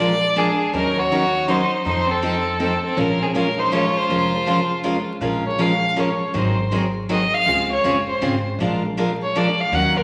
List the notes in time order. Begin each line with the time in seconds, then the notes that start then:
Already playing: A#1 D5
0.00 G#3 D4 F4 A#4
0.36 F3 G#3 D4 F4 G#4 A#4
0.73 D#2 D#3 F#3 C#4 D#4 A#4
0.98 F#4 C#5
1.12 D#3 F#3 C#4 D#4 A#4
1.48 D#3 F#3 C#4 D#4 A#4 C5
1.85 F2 F3 C4 D#4 A4 C5
2.07 C4 A4
2.22 F3 C4 D#4 A4
2.59 F3 C4 D#4 A4
2.64 A4
2.83 C4 A4
2.97 A#1 F3 G#3 C#4 F4 A#4
3.19 C4 G#4
3.34 F3 G#3 C#4 F4 A#4
3.58 D#4 C5
3.72 F3 G#3 C#4 F4 A#4 C#5
3.97 F4 C5
4.09 F1 F3 G#3 C#4 F4 A#4
4.46 F3 G#3 C#4 F4 A#4
4.83 F3 G#3 C#4 F4 A#4
5.21 A#1 F3 G#3 C#4 F4 A#4
5.47 C#5
5.58 F3 G#3 C#4 F4 A#4 F5
5.96 F3 G#3 C#4 F4 A#4 C#5
6.34 G#1 D#3 F#3 C4 D#4 G#4 C5
6.71 D#3 F#3 C4 D#4 G#4
7.09 D#3 F#3 C4 D#4 G#4 D#5
7.34 F5
7.46 C#2 C#3 G#3 C4 F4 G#4
7.73 C#5
7.84 F#1 C#3 G#3 C4 F4 G#4
8.10 C5
8.22 G#1 C#3 G#3 C4 F4 G#4
8.59 A#1 F3 G#3 D4 F4 A#4
8.97 F3 G#3 D4 F4 A#4
9.23 C#5
9.35 F3 G#3 D4 F4 A#4 D5
9.60 F5
9.72 D#2 D#3 F#3 C#4 D#4 A#4 F#5
9.97 A#4